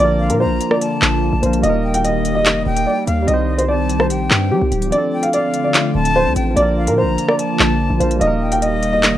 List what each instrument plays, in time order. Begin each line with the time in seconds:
Already playing: tine electric piano F3 A#3
0.00 808-style bass A#1, analog synth pad D3 F3 A#3 F4, tine electric piano D4, upright piano D5
0.04 tine electric piano A#4
0.20 flute F5
0.30 808-style bass A#2, upright piano A#4, closed hi-hat
0.40 upright piano C5, flute A#5
0.45 808-style bass A#1
0.61 closed hi-hat
0.71 upright piano D5, cross-stick
0.81 flute A5, closed hi-hat
1.02 808-style bass A#1, clap
1.33 808-style bass A#1
1.40 808-style bass A#1, tine electric piano F3 A#3 D4, upright piano C5, closed hi-hat
1.46 tine electric piano A#4
1.53 closed hi-hat
1.58 tine electric piano G3 A#3
1.63 808-style bass D#1, analog synth pad D#3 G3 G4, tine electric piano D#4, upright piano D#5, closed hi-hat
1.70 tine electric piano A#4
1.84 flute G5
1.94 upright piano G5, closed hi-hat
2.04 upright piano D#5, flute D#5, closed hi-hat
2.25 closed hi-hat
2.35 upright piano D#5
2.46 808-style bass F1, clap, closed hi-hat
2.66 808-style bass D#1, flute G5
2.76 closed hi-hat
2.87 upright piano D5
3.07 808-style bass D#2, flute F5, closed hi-hat
3.22 tine electric piano G3 C4
3.27 808-style bass C2, analog synth pad C4 G4, tine electric piano D#4, upright piano D#5, closed hi-hat
3.34 tine electric piano C5
3.48 flute D#5
3.58 upright piano C5, closed hi-hat
3.68 upright piano D5, flute A5
3.89 closed hi-hat
3.99 upright piano C5, cross-stick
4.10 808-style bass A#1, flute G5, closed hi-hat
4.31 808-style bass G2, clap
4.51 808-style bass G3, upright piano G4
4.61 808-style bass C2
4.72 808-style bass D1, closed hi-hat, open hi-hat
4.82 closed hi-hat
4.87 tine electric piano F3 C4
4.92 analog synth pad D3 A3 C4 F4, tine electric piano D4, upright piano D5, closed hi-hat
4.98 tine electric piano A4
5.13 flute G5
5.23 upright piano F5, closed hi-hat
5.33 upright piano D5, flute F5, closed hi-hat
5.54 closed hi-hat
5.64 upright piano D5
5.74 clap, closed hi-hat
5.95 808-style bass D1, flute A5
6.05 closed hi-hat
6.16 upright piano C5
6.26 808-style bass D2
6.36 808-style bass A1, flute G5, closed hi-hat
6.51 tine electric piano F3 A#3
6.56 808-style bass A#1, analog synth pad F3 A#3 F4, tine electric piano D4, upright piano D5, closed hi-hat
6.62 tine electric piano A#4
6.77 flute F5
6.87 808-style bass A#2, upright piano A#4, closed hi-hat
6.98 upright piano C5, flute A#5
7.03 808-style bass A#1
7.18 closed hi-hat
7.28 upright piano D5, cross-stick
7.39 flute A5, closed hi-hat
7.59 808-style bass A#1, clap
7.90 808-style bass A#1
7.98 808-style bass A#1, tine electric piano F3 A#3 D4, upright piano C5, closed hi-hat
8.03 tine electric piano A#4
8.11 closed hi-hat
8.16 tine electric piano G3 A#3
8.21 808-style bass D#1, analog synth pad D#3 G3 G4, tine electric piano D#4, upright piano D#5, closed hi-hat
8.27 tine electric piano A#4
8.41 flute G5
8.52 upright piano G5, closed hi-hat
8.62 upright piano D#5, flute D#5, closed hi-hat
8.83 closed hi-hat
8.93 upright piano D#5
9.03 808-style bass F1, clap, closed hi-hat